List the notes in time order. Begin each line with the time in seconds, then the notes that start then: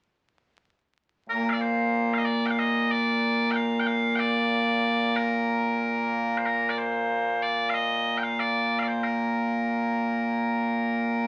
1.29 A#2 A#3 A#4
1.50 D5 F5
1.61 C5
2.13 F5
2.18 D#5
2.25 D5
2.46 G5
2.50 F5
2.59 D#5
2.91 D5
3.51 G5
3.56 F5
3.80 G5
3.86 F5
4.15 D5 G5
5.16 A#4
6.38 C5
6.46 A#4
6.70 D5
6.78 C5
7.42 D5
7.70 F5
7.74 D#5
8.18 G5
8.23 F5
8.40 D5
8.79 D5 F5
8.87 C5
9.03 A#4